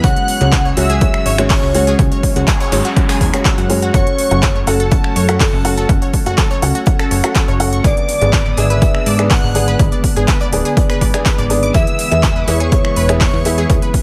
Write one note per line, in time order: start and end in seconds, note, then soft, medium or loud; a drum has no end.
0.00 0.14 C#2 loud
0.00 7.80 F#3 medium
0.00 3.90 G#3 medium
0.00 0.38 G#3 medium
0.00 3.90 C#4 medium
0.00 0.38 C#4 medium
0.00 0.38 F#4 medium
0.00 0.07 F#4 medium
0.00 0.38 C#5 medium
0.00 0.68 F#5 loud
0.00 0.07 F#5 medium
0.00 0.68 F#6 loud
0.00 kick loud
0.00 closed hi-hat medium
0.04 closed hi-hat loud
0.16 closed hi-hat soft
0.28 closed hi-hat medium
0.28 open hi-hat loud
0.41 0.73 C#2 medium
0.41 0.53 G#3 medium
0.41 0.53 C#4 medium
0.41 0.53 F#4 medium
0.41 0.53 C#5 medium
0.41 closed hi-hat medium
0.52 0.56 G#4 medium
0.52 0.56 G#5 medium
0.52 kick loud
0.52 snare loud
0.52 clap loud
0.52 closed hi-hat medium
0.65 0.70 C#5 medium
0.65 0.70 C#6 medium
0.77 1.10 C#2 loud
0.77 0.99 G#3 medium
0.77 0.99 C#4 medium
0.77 0.99 F#4 medium
0.77 0.82 F#4 medium
0.77 0.99 C#5 loud
0.77 1.41 E5 loud
0.77 0.82 F#5 medium
0.77 1.41 E6 loud
0.77 closed hi-hat medium
0.77 open hi-hat loud
0.90 0.95 G#4 medium
0.90 0.95 G#5 medium
0.90 closed hi-hat medium
1.01 1.35 G#3 medium
1.01 1.35 C#4 medium
1.01 1.35 F#4 medium
1.01 1.35 C#5 loud
1.01 kick loud
1.01 closed hi-hat medium
1.14 finger snap medium
1.26 1.59 G#1 medium
1.26 1.31 C#5 loud
1.26 1.31 C#6 medium
1.26 closed hi-hat medium
1.26 open hi-hat loud
1.38 1.72 G#3 loud
1.38 1.72 C#4 medium
1.38 1.72 F#4 medium
1.38 1.72 C#5 loud
1.38 finger snap medium
1.38 closed hi-hat medium
1.50 1.94 C#5 medium
1.50 1.94 C#6 medium
1.50 kick loud
1.50 snare loud
1.50 clap loud
1.50 closed hi-hat medium
1.50 open hi-hat medium
1.63 1.95 C#2 loud
1.74 1.96 G#3 loud
1.74 1.96 C#4 medium
1.74 1.96 F#4 medium
1.74 1.80 F#4 medium
1.74 1.96 C#5 loud
1.74 1.80 F#5 medium
1.74 closed hi-hat medium
1.74 open hi-hat loud
1.87 1.92 G#4 medium
1.87 1.92 G#5 medium
1.87 snare soft
1.87 closed hi-hat medium
1.99 2.09 C#2 loud
1.99 2.33 G#3 medium
1.99 2.33 C#4 medium
1.99 2.33 F#4 medium
1.99 2.33 C#5 medium
1.99 kick loud
1.99 closed hi-hat medium
1.99 noise sweep medium
2.12 2.17 C#5 medium
2.12 2.17 C#6 medium
2.12 closed hi-hat soft
2.23 kick medium
2.23 closed hi-hat medium
2.23 open hi-hat loud
2.35 2.45 C#2 medium
2.35 2.48 G#3 medium
2.35 2.48 C#4 medium
2.35 2.48 F#4 medium
2.35 2.41 F#4 medium
2.35 2.48 C#5 medium
2.35 2.41 F#5 medium
2.35 closed hi-hat soft
2.35 closed hi-hat medium
2.48 2.53 G#4 loud
2.48 2.53 G#5 medium
2.48 kick loud
2.48 snare loud
2.48 clap loud
2.48 closed hi-hat medium
2.48 closed hi-hat loud
2.60 2.65 C#5 loud
2.60 2.65 C#6 medium
2.60 snare medium
2.60 closed hi-hat soft
2.72 2.82 G#1 medium
2.72 2.94 G#3 medium
2.72 2.94 C#4 medium
2.72 2.94 F#4 medium
2.72 2.94 C#5 loud
2.72 snare loud
2.72 closed hi-hat medium
2.72 open hi-hat loud
2.85 2.90 F#4 medium
2.85 2.90 F#5 medium
2.85 closed hi-hat medium
2.96 3.31 G#3 medium
2.96 3.30 C#4 medium
2.96 3.30 F#4 medium
2.96 3.30 C#5 loud
2.96 kick loud
2.96 closed hi-hat medium
3.09 3.17 G#4 loud
3.09 3.17 G#5 medium
3.09 finger snap medium
3.09 snare loud
3.09 closed hi-hat medium
3.09 open hi-hat medium
3.21 3.31 E2 medium
3.21 3.26 G#5 medium
3.21 3.26 G#6 medium
3.21 kick medium
3.21 snare soft
3.21 open hi-hat loud
3.33 3.67 G#3 loud
3.33 3.67 C#4 medium
3.33 3.67 F#4 medium
3.33 3.37 F#4 medium
3.33 3.67 C#5 loud
3.33 3.37 F#5 medium
3.33 finger snap medium
3.33 closed hi-hat medium
3.45 3.51 E6 loud
3.45 kick loud
3.45 clap loud
3.45 closed hi-hat medium
3.58 3.90 F#2 medium
3.58 3.63 F#5 medium
3.58 3.63 F#6 medium
3.58 closed hi-hat soft
3.58 closed hi-hat medium
3.70 3.91 G#3 loud
3.70 3.91 C#4 medium
3.70 3.91 F#4 medium
3.70 3.91 C#5 loud
3.70 closed hi-hat medium
3.70 open hi-hat loud
3.82 3.90 F#4 medium
3.82 3.90 F#5 medium
3.82 closed hi-hat medium
3.94 4.04 F#1 loud
3.94 7.80 A3 medium
3.94 7.80 C#4 medium
3.94 4.28 C#4 medium
3.94 4.28 F#4 medium
3.94 3.97 F#4 medium
3.94 4.28 A4 medium
3.94 4.58 C#5 loud
3.94 4.28 F#5 medium
3.94 3.97 F#5 medium
3.94 4.58 C#6 loud
3.94 kick loud
3.94 closed hi-hat medium
4.07 closed hi-hat soft
4.18 closed hi-hat medium
4.18 open hi-hat loud
4.31 4.63 F#1 medium
4.31 4.43 C#4 medium
4.31 4.43 F#4 medium
4.31 4.43 A4 medium
4.31 4.43 F#5 medium
4.31 closed hi-hat medium
4.43 4.46 A4 medium
4.43 4.46 A5 medium
4.43 kick loud
4.43 snare loud
4.43 clap loud
4.43 closed hi-hat medium
4.56 4.60 C#5 medium
4.56 4.60 C#6 medium
4.67 5.00 F#1 loud
4.67 4.89 C#4 medium
4.67 4.89 F#4 medium
4.67 4.73 F#4 medium
4.67 4.89 A4 medium
4.67 5.31 A4 loud
4.67 4.89 F#5 loud
4.67 4.73 F#5 medium
4.67 5.31 A5 loud
4.67 snare medium
4.67 closed hi-hat medium
4.67 open hi-hat loud
4.80 4.85 A4 medium
4.80 4.85 A5 medium
4.80 closed hi-hat medium
4.91 5.26 C#4 medium
4.91 5.26 F#4 medium
4.91 5.26 A4 medium
4.91 5.26 F#5 loud
4.91 kick loud
4.91 closed hi-hat medium
5.04 finger snap medium
5.16 5.49 F#2 medium
5.16 5.21 C#5 loud
5.16 5.21 C#6 medium
5.16 closed hi-hat medium
5.16 open hi-hat loud
5.29 5.62 C#4 loud
5.29 5.62 F#4 loud
5.29 5.62 A4 medium
5.29 5.62 F#5 loud
5.29 finger snap medium
5.29 closed hi-hat medium
5.40 5.84 A4 loud
5.40 5.84 A5 medium
5.40 kick loud
5.40 snare loud
5.40 clap loud
5.40 closed hi-hat medium
5.40 open hi-hat medium
5.53 5.85 F#1 loud
5.65 5.86 C#4 loud
5.65 5.86 F#4 medium
5.65 5.70 F#4 medium
5.65 5.86 A4 medium
5.65 5.86 F#5 loud
5.65 5.70 F#5 medium
5.65 closed hi-hat medium
5.65 open hi-hat loud
5.77 5.82 A4 medium
5.77 5.82 A5 medium
5.77 snare soft
5.77 closed hi-hat medium
5.89 5.99 F#1 loud
5.89 6.23 C#4 medium
5.89 6.23 F#4 medium
5.89 6.23 A4 medium
5.89 6.23 F#5 medium
5.89 kick loud
5.89 closed hi-hat medium
6.02 6.07 C#5 medium
6.02 6.07 C#6 medium
6.02 closed hi-hat soft
6.13 kick medium
6.13 closed hi-hat medium
6.13 open hi-hat loud
6.26 6.36 F#1 medium
6.26 6.38 C#4 medium
6.26 6.38 F#4 medium
6.26 6.31 F#4 loud
6.26 6.38 A4 medium
6.26 6.38 F#5 medium
6.26 6.31 F#5 medium
6.26 closed hi-hat soft
6.26 closed hi-hat medium
6.37 6.43 A4 loud
6.37 6.43 A5 medium
6.37 kick loud
6.37 snare loud
6.37 clap loud
6.37 closed hi-hat medium
6.51 6.55 C#5 loud
6.51 6.56 C#6 medium
6.51 snare soft
6.62 6.72 C#2 medium
6.62 6.84 C#4 medium
6.62 6.84 F#4 medium
6.62 6.84 A4 medium
6.62 6.84 F#5 loud
6.62 closed hi-hat medium
6.62 open hi-hat loud
6.75 6.80 F#4 medium
6.75 6.80 F#5 medium
6.75 closed hi-hat soft
6.75 closed hi-hat medium
6.86 7.21 C#4 medium
6.86 7.21 F#4 medium
6.86 7.21 A4 medium
6.86 7.21 F#5 loud
6.86 kick loud
6.86 closed hi-hat medium
6.99 7.07 A4 loud
6.99 7.07 A5 medium
6.99 finger snap medium
7.11 7.21 F#1 medium
7.11 7.16 C#5 medium
7.11 7.16 C#6 medium
7.11 closed hi-hat medium
7.11 open hi-hat loud
7.24 7.57 C#4 loud
7.24 7.29 F#4 medium
7.24 7.57 F#4 loud
7.24 7.57 A4 medium
7.24 7.57 F#5 loud
7.24 7.29 F#5 medium
7.24 finger snap medium
7.24 closed hi-hat medium
7.35 7.41 A4 loud
7.35 7.41 A5 medium
7.35 kick loud
7.35 snare loud
7.35 clap loud
7.35 closed hi-hat medium
7.48 7.81 F#1 loud
7.48 7.53 C#5 loud
7.48 7.53 C#6 medium
7.48 closed hi-hat soft
7.60 7.81 C#4 loud
7.60 7.81 F#4 medium
7.60 7.81 A4 medium
7.60 7.81 F#5 loud
7.60 closed hi-hat medium
7.60 open hi-hat loud
7.73 7.76 C#6 loud
7.73 closed hi-hat medium
7.84 7.94 G#1 loud
7.84 11.71 D3 medium
7.84 14.02 G#3 medium
7.84 13.66 B3 medium
7.84 8.18 B3 medium
7.84 8.18 D4 medium
7.84 7.87 G#4 medium
7.84 8.18 G#4 medium
7.84 8.59 D5 loud
7.84 8.18 D5 medium
7.84 7.87 G#5 medium
7.84 8.57 D6 loud
7.84 kick loud
7.84 closed hi-hat medium
7.97 closed hi-hat soft
8.08 closed hi-hat medium
8.08 open hi-hat loud
8.21 8.54 G#1 medium
8.21 8.33 B3 medium
8.21 8.33 D4 medium
8.21 8.33 G#4 medium
8.21 8.33 D5 medium
8.21 closed hi-hat medium
8.33 8.36 B4 medium
8.33 8.36 B5 medium
8.33 kick loud
8.33 snare loud
8.33 clap loud
8.33 closed hi-hat medium
8.46 8.51 D5 medium
8.46 8.51 D6 medium
8.57 8.90 G#1 loud
8.57 8.79 B3 medium
8.57 8.79 D4 medium
8.57 8.63 G#4 medium
8.57 8.79 G#4 medium
8.57 8.79 D5 loud
8.57 9.21 E5 loud
8.57 8.63 G#5 medium
8.57 9.21 E6 loud
8.57 snare soft
8.57 closed hi-hat medium
8.57 open hi-hat loud
8.70 8.75 B4 medium
8.70 8.75 B5 medium
8.70 closed hi-hat medium
8.82 9.16 B3 medium
8.82 9.16 D4 medium
8.82 9.16 G#4 medium
8.82 9.16 D5 loud
8.82 kick loud
8.82 closed hi-hat medium
8.95 finger snap medium
9.06 9.39 G#2 medium
9.06 9.12 D5 loud
9.06 9.12 D6 medium
9.06 closed hi-hat medium
9.06 open hi-hat loud
9.19 9.52 B3 loud
9.19 9.52 D4 medium
9.19 9.52 G#4 medium
9.19 9.52 D5 loud
9.19 finger snap medium
9.19 closed hi-hat soft
9.30 9.75 F#5 loud
9.30 9.75 F#6 medium
9.30 kick loud
9.30 snare loud
9.30 clap loud
9.30 closed hi-hat medium
9.30 open hi-hat medium
9.43 9.76 G#1 loud
9.55 9.77 B3 loud
9.55 9.77 D4 medium
9.55 9.77 G#4 medium
9.55 9.60 G#4 medium
9.55 9.77 D5 loud
9.55 9.60 G#5 medium
9.55 closed hi-hat medium
9.55 open hi-hat loud
9.68 9.73 B4 medium
9.68 9.73 B5 medium
9.68 snare soft
9.68 closed hi-hat medium
9.79 9.90 G#1 loud
9.79 10.13 B3 medium
9.79 10.13 D4 medium
9.79 10.13 G#4 medium
9.79 10.13 D5 medium
9.79 kick loud
9.79 closed hi-hat medium
9.91 9.97 D5 medium
9.91 9.97 D6 medium
9.91 closed hi-hat soft
10.04 kick medium
10.04 closed hi-hat medium
10.04 open hi-hat loud
10.16 10.26 G#1 medium
10.16 10.28 B3 medium
10.16 10.28 D4 medium
10.16 10.28 G#4 medium
10.16 10.21 G#4 loud
10.16 10.28 D5 medium
10.16 10.21 G#5 medium
10.16 closed hi-hat soft
10.16 closed hi-hat medium
10.27 10.33 B4 loud
10.27 10.33 B5 medium
10.27 kick loud
10.27 snare loud
10.27 clap loud
10.27 closed hi-hat medium
10.39 10.46 D5 loud
10.39 10.46 D6 medium
10.39 snare medium
10.53 10.63 D1 medium
10.53 10.74 B3 medium
10.53 10.74 D4 medium
10.53 10.74 G#4 medium
10.53 10.74 D5 loud
10.53 closed hi-hat medium
10.53 open hi-hat loud
10.65 10.70 G#4 medium
10.65 10.70 G#5 medium
10.65 closed hi-hat medium
10.65 closed hi-hat soft
10.77 11.11 B3 medium
10.77 11.11 D4 medium
10.77 11.11 G#4 medium
10.77 11.11 D5 loud
10.77 kick loud
10.77 closed hi-hat medium
10.77 closed hi-hat loud
10.90 10.97 B4 loud
10.90 10.97 B5 medium
10.90 finger snap medium
11.01 11.11 G#1 medium
11.01 11.07 D5 medium
11.01 11.07 D6 medium
11.01 kick medium
11.01 closed hi-hat medium
11.01 open hi-hat loud
11.14 11.47 B3 loud
11.14 11.47 D4 medium
11.14 11.47 G#4 loud
11.14 11.19 G#4 medium
11.14 11.47 D5 loud
11.14 11.19 G#5 medium
11.14 finger snap medium
11.14 closed hi-hat soft
11.26 11.31 B4 loud
11.26 11.31 B5 medium
11.26 kick loud
11.26 snare loud
11.26 clap loud
11.26 closed hi-hat medium
11.38 11.71 G#1 loud
11.38 11.43 D5 loud
11.38 11.43 D6 medium
11.38 closed hi-hat soft
11.50 11.72 B3 loud
11.50 11.72 D4 medium
11.50 11.72 G#4 medium
11.50 11.72 D5 loud
11.50 closed hi-hat medium
11.50 open hi-hat loud
11.63 11.66 D6 loud
11.63 closed hi-hat medium
11.74 11.85 E2 loud
11.74 14.02 E3 medium
11.74 12.09 B3 medium
11.74 12.09 E4 medium
11.74 11.78 E4 medium
11.74 12.09 G#4 medium
11.74 12.49 E5 loud
11.74 12.09 E5 medium
11.74 11.78 E5 medium
11.74 12.48 E6 loud
11.74 kick loud
11.74 closed hi-hat medium
11.87 closed hi-hat soft
11.99 closed hi-hat medium
11.99 open hi-hat loud
12.12 12.44 E2 medium
12.12 12.23 B3 medium
12.12 12.23 E4 medium
12.12 12.23 G#4 medium
12.12 12.23 E5 medium
12.12 closed hi-hat medium
12.23 12.26 G#4 medium
12.23 12.26 G#5 medium
12.23 kick loud
12.23 snare loud
12.23 clap loud
12.23 closed hi-hat medium
12.36 12.41 B4 medium
12.36 12.41 B5 medium
12.47 12.81 E2 loud
12.47 12.69 B3 medium
12.47 12.53 E4 medium
12.47 12.69 E4 medium
12.47 12.69 G#4 medium
12.47 13.11 C#5 loud
12.47 12.53 E5 medium
12.47 12.69 E5 loud
12.47 13.11 C#6 loud
12.47 snare medium
12.47 closed hi-hat medium
12.47 open hi-hat loud
12.60 12.65 G#4 medium
12.60 12.65 G#5 medium
12.60 closed hi-hat medium
12.72 13.06 B3 medium
12.72 13.06 E4 medium
12.72 13.06 G#4 medium
12.72 13.06 E5 loud
12.72 kick loud
12.72 closed hi-hat medium
12.85 finger snap medium
12.96 13.29 E1 medium
12.96 13.02 B4 loud
12.96 13.02 B5 medium
12.96 closed hi-hat medium
12.96 open hi-hat loud
13.09 13.42 B3 loud
13.09 13.42 E4 medium
13.09 13.42 G#4 loud
13.09 13.42 E5 loud
13.09 finger snap medium
13.09 closed hi-hat medium
13.20 13.65 C#5 loud
13.20 13.65 C#6 medium
13.20 kick loud
13.20 snare loud
13.20 clap loud
13.20 closed hi-hat medium
13.20 open hi-hat medium
13.34 13.66 E2 loud
13.45 13.67 B3 loud
13.45 13.51 E4 medium
13.45 13.67 E4 medium
13.45 13.67 G#4 medium
13.45 13.51 E5 medium
13.45 13.67 E5 loud
13.45 closed hi-hat medium
13.45 open hi-hat loud
13.58 13.63 G#4 medium
13.58 13.63 G#5 medium
13.58 snare soft
13.58 closed hi-hat medium
13.70 13.80 E2 loud
13.70 14.02 B3 medium
13.70 14.02 C#4 medium
13.70 14.02 E4 medium
13.70 14.02 G#4 medium
13.70 14.02 E5 medium
13.70 kick loud
13.70 closed hi-hat medium
13.82 13.87 B4 medium
13.82 13.87 B5 medium
13.82 closed hi-hat soft
13.94 kick medium
13.94 closed hi-hat medium
13.94 open hi-hat loud